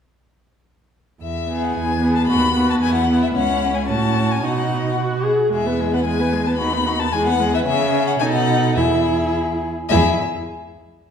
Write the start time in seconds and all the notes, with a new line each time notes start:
1.22 E2 E5
1.48 B3 G#4
1.64 F#5
1.75 E2 G#5
2.02 B3 G#4
2.15 A5
2.27 D#2 B3 F#4 B5
2.56 B3 F#4
2.70 A5
2.82 E2 B3 E4 G#5
2.95 F#5
3.10 B3 E4
3.22 E5
3.34 C#2 C#4 E4 F#5
3.74 G#5
3.89 A2 C#4 F#4 A5
4.32 G#5
4.43 B2 D#4 F#4 F#5
4.98 F#4
5.25 G#4
5.52 E2 G#3 G#4 E5
5.66 B3 B4
5.80 G#3 G#4
5.93 B3 B4 F#5
6.05 G#3 G#4 G#5
6.20 B3 B4
6.33 G#3 G#4
6.46 B3 B4 A5
6.57 D#2 D#4 F#4 B5
6.73 B3 D#4
6.86 D#4 F#4
6.99 B3 D#4 A5
7.12 E2 G#3 G#4 G#5
7.27 B3 B4 F#5
7.40 G#3 G#4
7.53 B3 B4 E5
7.66 C#3 C#4 G#4 E5
8.07 F#5
8.19 B2 D#4 A4 G#5
8.33 F#5
8.76 E2 E4 G#4 E5
9.89 E2 E4 G#4 E5